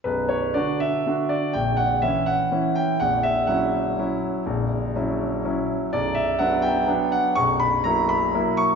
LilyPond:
<<
  \new Staff \with { instrumentName = "Grand piano" } { \time 3/4 \key b \minor \tempo 4 = 123 b'8 cis''8 d''8 e''4 d''8 | g''8 fis''8 e''8 fis''4 g''8 | fis''8 e''8 fis''2~ | fis''2~ fis''8 r8 |
d''8 e''8 fis''8 g''4 fis''8 | cis'''8 b''8 ais''8 b''4 cis'''8 | }
  \new Staff \with { instrumentName = "Grand piano" } { \clef bass \time 3/4 \key b \minor <b,,, b,,>4 <d d' fis'>4 <d d' fis'>4 | <ais,,, ais,,>4 <e cis' e'>4 <e cis' e'>4 | <ais,,, ais,,>4 <fis cis' e'>4 <fis cis' e'>4 | <ais,,, ais,,>4 <fis cis' e'>4 <fis cis' e'>4 |
<b,,, b,,>4 <fis b d'>4 <fis b d'>4 | <b,,, b,,>4 <fis ais e'>4 <fis ais e'>4 | }
>>